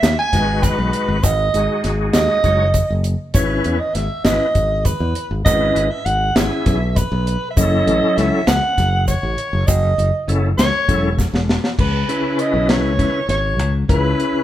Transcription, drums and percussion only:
0.03 snare loud
0.03 closed hi-hat medium
0.03 shaker soft
0.33 kick medium
0.33 snare soft
0.33 closed hi-hat medium
0.33 shaker soft
0.63 kick medium
0.63 snare soft
0.63 closed hi-hat medium
0.63 shaker soft
0.93 closed hi-hat medium
1.24 kick loud
1.24 closed hi-hat medium
1.24 shaker medium
1.54 closed hi-hat medium
1.54 shaker soft
1.84 snare soft
1.84 closed hi-hat medium
2.13 snare medium
2.13 closed hi-hat medium
2.13 shaker soft
2.44 kick medium
2.44 closed hi-hat medium
2.44 shaker soft
2.74 kick medium
2.74 closed hi-hat medium
2.74 shaker soft
3.04 closed hi-hat medium
3.04 shaker soft
3.34 kick loud
3.34 closed hi-hat medium
3.34 shaker medium
3.64 closed hi-hat soft
3.95 snare soft
3.95 closed hi-hat medium
4.25 snare medium
4.25 closed hi-hat medium
4.25 shaker soft
4.55 kick medium
4.55 closed hi-hat medium
4.55 shaker soft
4.85 kick medium
4.85 closed hi-hat medium
4.85 shaker soft
5.15 closed hi-hat medium
5.46 kick loud
5.46 closed hi-hat medium
5.46 shaker medium
5.76 closed hi-hat medium
6.06 closed hi-hat medium
6.36 snare loud
6.36 closed hi-hat medium
6.36 shaker soft
6.66 kick medium
6.66 snare soft
6.66 closed hi-hat medium
6.66 shaker soft
6.96 kick medium
6.96 closed hi-hat medium
6.96 shaker soft
7.27 closed hi-hat medium
7.57 kick loud
7.57 closed hi-hat medium
7.57 shaker medium
7.88 closed hi-hat medium
8.18 snare soft
8.18 closed hi-hat medium
8.47 snare loud
8.47 closed hi-hat medium
8.47 shaker soft
8.78 kick medium
8.78 snare soft
8.78 closed hi-hat medium
8.78 shaker soft
9.08 kick medium
9.08 closed hi-hat medium
9.08 shaker soft
9.38 closed hi-hat medium
9.68 kick loud
9.68 closed hi-hat medium
9.68 shaker medium
9.99 closed hi-hat medium
10.29 closed hi-hat medium
10.59 snare loud
10.59 closed hi-hat medium
10.59 shaker soft
10.89 kick medium
10.89 closed hi-hat medium
10.89 shaker soft
11.19 kick medium
11.19 snare soft
11.19 shaker soft
11.34 snare medium
11.49 snare medium
11.64 snare medium
11.79 kick loud
11.79 crash medium
12.09 closed hi-hat medium
12.39 closed hi-hat medium
12.69 snare medium
12.69 closed hi-hat medium
12.99 kick medium
12.99 snare soft
12.99 closed hi-hat medium
13.29 snare soft
13.29 closed hi-hat medium
13.59 closed hi-hat medium
13.89 kick medium
13.89 closed hi-hat medium
14.20 closed hi-hat soft

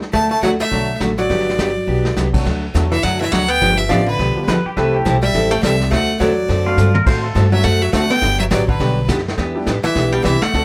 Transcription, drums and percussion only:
0.02 snare soft
0.13 brush sweep medium
0.13 kick soft
0.13 snare soft
0.43 kick soft
0.43 snare medium
0.43 hi-hat pedal medium
0.60 snare soft
0.72 brush sweep soft
0.72 kick soft
0.72 snare soft
1.00 kick soft
1.00 snare medium
1.00 hi-hat pedal medium
1.18 snare soft
1.30 brush sweep soft
1.30 kick soft
1.30 snare soft
1.39 snare soft
1.49 snare soft
1.59 kick soft
1.59 snare medium
1.59 hi-hat pedal medium
2.05 snare medium
2.17 snare medium
2.17 hi-hat pedal medium
2.34 kick medium
2.34 crash medium
2.46 brush sweep soft
2.46 kick soft
2.46 snare soft
2.75 kick soft
2.75 snare medium
2.75 hi-hat pedal medium
2.92 snare soft
3.04 brush sweep medium
3.04 kick soft
3.04 snare soft
3.33 kick soft
3.33 snare medium
3.33 hi-hat pedal medium
3.62 brush sweep soft
3.62 kick soft
3.62 snare soft
3.90 kick soft
3.90 snare medium
3.90 hi-hat pedal medium
4.19 brush sweep soft
4.19 kick soft
4.19 snare soft
4.48 kick soft
4.48 snare medium
4.48 hi-hat pedal medium
4.77 brush sweep soft
4.77 kick soft
4.77 snare soft
5.06 kick soft
5.06 snare medium
5.06 hi-hat pedal medium
5.34 brush sweep medium
5.34 kick soft
5.34 snare soft
5.63 kick soft
5.63 snare medium
5.63 hi-hat pedal medium
5.81 snare soft
5.92 brush sweep medium
5.92 kick soft
5.92 snare medium
6.20 kick soft
6.20 snare medium
6.20 hi-hat pedal medium
6.49 brush sweep soft
6.49 kick soft
6.49 snare soft
6.78 hi-hat pedal medium
6.95 high tom medium
7.06 brush sweep medium
7.06 kick medium
7.06 snare soft
7.06 crash medium
7.35 kick soft
7.35 snare medium
7.35 hi-hat pedal medium
7.64 brush sweep soft
7.64 kick soft
7.64 snare soft
7.93 kick soft
7.93 snare medium
7.93 hi-hat pedal medium
8.10 snare soft
8.22 brush sweep soft
8.22 kick soft
8.22 snare soft
8.51 kick soft
8.51 snare medium
8.51 hi-hat pedal medium
8.68 kick medium
8.80 brush sweep soft
8.80 kick soft
8.80 snare soft
9.09 kick soft
9.09 snare medium
9.09 hi-hat pedal medium
9.18 snare soft
9.28 snare soft
9.38 brush sweep medium
9.38 kick soft
9.38 snare soft
9.67 kick soft
9.67 snare medium
9.67 hi-hat pedal medium
9.84 snare soft
9.95 brush sweep soft
9.95 kick soft
9.95 snare soft
10.25 kick soft
10.25 snare medium
10.25 hi-hat pedal medium
10.42 snare soft
10.54 brush sweep soft
10.54 kick soft
10.54 snare soft

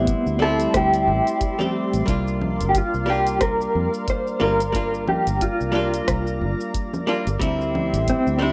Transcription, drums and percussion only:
0.07 kick loud
0.07 closed hi-hat medium
0.07 shaker medium
0.27 shaker soft
0.60 closed hi-hat soft
0.60 shaker medium
0.74 kick loud
0.74 cross-stick medium
0.74 closed hi-hat medium
0.74 shaker medium
0.94 closed hi-hat soft
0.94 shaker soft
1.27 closed hi-hat soft
1.27 shaker medium
1.41 kick loud
1.41 closed hi-hat medium
1.41 shaker medium
1.60 low conga medium
1.60 shaker soft
1.93 closed hi-hat soft
1.93 shaker medium
2.08 kick loud
2.08 closed hi-hat medium
2.08 shaker medium
2.28 shaker soft
2.41 low conga medium
2.61 closed hi-hat soft
2.61 shaker medium
2.75 kick loud
2.75 closed hi-hat medium
2.75 shaker medium
2.94 shaker soft
3.27 closed hi-hat soft
3.27 shaker medium
3.41 kick loud
3.41 cross-stick medium
3.41 closed hi-hat medium
3.41 shaker medium
3.61 shaker soft
3.94 shaker medium
4.08 kick loud
4.08 closed hi-hat medium
4.08 shaker medium
4.27 shaker soft
4.60 closed hi-hat soft
4.60 shaker medium
4.75 kick loud
4.75 closed hi-hat medium
4.75 shaker soft
4.94 shaker soft
5.08 low conga medium
5.27 closed hi-hat soft
5.27 shaker medium
5.41 kick loud
5.41 closed hi-hat medium
5.41 shaker medium
5.61 shaker soft
5.94 closed hi-hat soft
5.94 shaker medium
6.08 kick loud
6.08 cross-stick medium
6.08 closed hi-hat medium
6.08 shaker medium
6.27 shaker soft
6.61 shaker medium
6.74 kick medium
6.74 closed hi-hat medium
6.74 shaker medium
6.93 low conga medium
6.93 shaker soft
7.27 closed hi-hat soft
7.27 shaker medium
7.41 kick loud
7.41 closed hi-hat medium
7.41 shaker soft
7.61 shaker soft
7.75 low conga medium
7.94 closed hi-hat soft
7.94 shaker medium
8.08 kick medium
8.08 closed hi-hat medium
8.08 shaker medium
8.27 shaker soft

